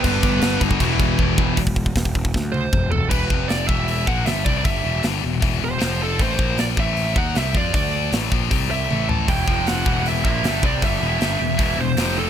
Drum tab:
CC |x-x-x-x-x-x-----|----------------|x---------------|----------------|
HH |----------------|o---o-----------|----o---o---o---|o---o---o---o---|
SD |----o-----------|----o---o-------|----o-------o---|----o-------o---|
T1 |----------------|----------o-----|----------------|----------------|
T2 |----------------|------------o---|----------------|----------------|
FT |----------------|--------------o-|----------------|----------------|
BD |o-o---ooo-o-o-o-|ooooooooo---o---|o-o---o---o---o-|o-------o-------|

CC |----------------|----------------|----------------|----------------|
HH |o---o---o---o---|o---o---o-------|o---o---o---o---|o---o---o---o---|
SD |----o-------o---|----o-----------|----o-------o---|----o-------o---|
T1 |----------------|------------o---|----------------|----------------|
T2 |----------------|----------------|----------------|----------------|
FT |----------------|--------------o-|----------------|----------------|
BD |o-o---o---o---o-|o-----o-o-------|o-o---o---o---o-|o-------o-------|